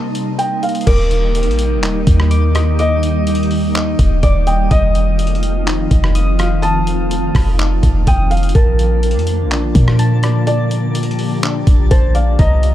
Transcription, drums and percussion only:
0.15 closed hi-hat medium
0.39 closed hi-hat medium
0.63 closed hi-hat medium
0.69 closed hi-hat medium
0.75 closed hi-hat medium
0.81 closed hi-hat medium
0.87 kick loud
0.87 closed hi-hat medium
0.87 crash loud
1.11 closed hi-hat medium
1.35 closed hi-hat medium
1.43 closed hi-hat medium
1.51 closed hi-hat soft
1.59 closed hi-hat medium
1.83 clap loud
1.83 closed hi-hat medium
2.07 kick loud
2.07 closed hi-hat medium
2.20 cross-stick loud
2.31 closed hi-hat medium
2.55 cross-stick loud
2.55 closed hi-hat medium
2.79 closed hi-hat medium
3.03 closed hi-hat medium
3.27 closed hi-hat medium
3.35 closed hi-hat medium
3.43 closed hi-hat soft
3.51 open hi-hat medium
3.75 clap loud
3.75 closed hi-hat medium
3.99 kick loud
3.99 closed hi-hat medium
4.23 kick loud
4.23 closed hi-hat medium
4.47 closed hi-hat medium
4.71 kick loud
4.71 closed hi-hat medium
4.95 closed hi-hat medium
5.19 closed hi-hat medium
5.27 closed hi-hat medium
5.35 closed hi-hat soft
5.43 closed hi-hat medium
5.67 clap loud
5.67 closed hi-hat medium
5.91 kick loud
5.91 closed hi-hat medium
6.04 cross-stick loud
6.15 closed hi-hat medium
6.39 cross-stick medium
6.39 closed hi-hat medium
6.63 closed hi-hat medium
6.87 closed hi-hat medium
7.11 closed hi-hat medium
7.35 kick loud
7.35 cross-stick loud
7.35 open hi-hat medium
7.59 clap loud
7.59 closed hi-hat medium
7.83 kick loud
7.83 closed hi-hat medium
8.07 kick loud
8.07 closed hi-hat medium
8.31 closed hi-hat medium
8.37 closed hi-hat medium
8.43 closed hi-hat medium
8.49 closed hi-hat medium
8.55 kick loud
8.55 closed hi-hat medium
8.79 closed hi-hat medium
9.03 closed hi-hat medium
9.11 closed hi-hat medium
9.19 closed hi-hat soft
9.27 closed hi-hat medium
9.51 clap loud
9.51 closed hi-hat medium
9.75 kick loud
9.75 closed hi-hat medium
9.88 cross-stick loud
9.99 closed hi-hat medium
10.23 cross-stick medium
10.23 closed hi-hat medium
10.47 closed hi-hat medium
10.71 closed hi-hat medium
10.95 closed hi-hat medium
11.03 closed hi-hat medium
11.11 closed hi-hat soft
11.19 open hi-hat medium
11.43 clap loud
11.43 closed hi-hat medium
11.67 kick loud
11.67 closed hi-hat medium
11.91 kick loud
11.91 closed hi-hat medium
12.15 closed hi-hat medium
12.39 kick loud
12.39 closed hi-hat medium
12.63 closed hi-hat medium

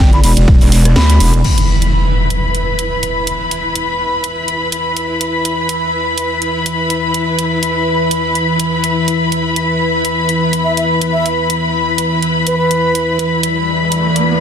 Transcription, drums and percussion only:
0.13 snare medium
0.13 closed hi-hat soft
0.24 open hi-hat loud
0.24 ride medium
0.37 closed hi-hat medium
0.37 ride soft
0.48 kick loud
0.48 ride medium
0.61 snare soft
0.61 open hi-hat medium
0.72 snare medium
0.72 open hi-hat loud
0.72 ride medium
0.85 cross-stick medium
0.85 closed hi-hat medium
0.96 snare loud
0.96 ride medium
1.10 snare medium
1.10 closed hi-hat medium
1.20 open hi-hat loud
1.20 ride medium
1.34 closed hi-hat medium
1.44 crash medium
1.58 closed hi-hat medium
1.82 closed hi-hat medium
2.30 closed hi-hat medium
2.55 closed hi-hat soft
2.79 closed hi-hat medium
3.03 closed hi-hat soft
3.27 closed hi-hat medium
3.51 closed hi-hat soft
3.75 closed hi-hat medium
4.24 closed hi-hat medium
4.48 closed hi-hat soft
4.72 closed hi-hat medium
4.97 closed hi-hat soft
5.21 closed hi-hat medium
5.45 closed hi-hat soft
5.69 closed hi-hat medium
6.18 closed hi-hat medium
6.42 closed hi-hat soft
6.66 closed hi-hat medium
6.90 closed hi-hat soft
7.14 closed hi-hat medium
7.39 closed hi-hat soft
7.63 closed hi-hat medium
8.11 closed hi-hat medium
8.35 closed hi-hat soft
8.60 closed hi-hat medium
8.84 closed hi-hat soft
9.08 closed hi-hat medium
9.32 closed hi-hat soft
9.56 closed hi-hat medium
10.05 closed hi-hat medium
10.29 closed hi-hat soft
10.53 closed hi-hat medium
10.77 closed hi-hat soft
11.01 closed hi-hat medium
11.26 closed hi-hat medium
11.50 closed hi-hat medium
11.98 closed hi-hat medium
12.22 closed hi-hat soft
12.47 closed hi-hat medium
12.71 closed hi-hat soft
12.95 closed hi-hat medium
13.19 closed hi-hat medium
13.43 closed hi-hat medium
13.92 closed hi-hat medium
14.16 closed hi-hat soft

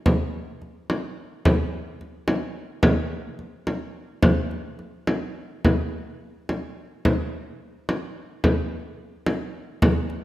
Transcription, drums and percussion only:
0.06 frame drum medium
0.62 frame drum soft
0.90 frame drum soft
1.45 frame drum medium
2.01 frame drum soft
2.28 frame drum soft
2.83 frame drum medium
3.39 frame drum soft
3.67 frame drum soft
4.23 frame drum medium
4.51 frame drum soft
4.79 frame drum soft
5.07 frame drum soft
5.65 frame drum soft
6.49 frame drum soft
7.05 frame drum soft
7.89 frame drum soft
8.44 frame drum medium
9.26 frame drum soft
9.82 frame drum medium
10.10 frame drum soft

